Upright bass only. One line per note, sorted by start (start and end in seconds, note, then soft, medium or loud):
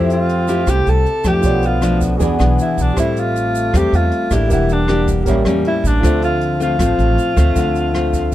0.00 0.63 F2 medium
0.67 0.85 C2 medium
0.87 1.04 C2 medium
1.24 1.42 F2 medium
1.44 2.16 B1 medium
2.20 2.38 E2 medium
2.40 2.57 B1 medium
2.78 2.96 B1 medium
2.97 3.69 A1 medium
3.74 3.91 E2 medium
3.93 4.10 E2 medium
4.31 4.49 A1 medium
4.50 5.22 E1 medium
5.26 5.44 A1 medium
5.45 5.63 E2 medium
5.84 6.01 A1 medium
6.03 6.75 D2 medium
6.79 6.97 A1 medium
6.99 7.16 A1 loud
7.37 7.55 D2 medium
7.56 8.28 D2 medium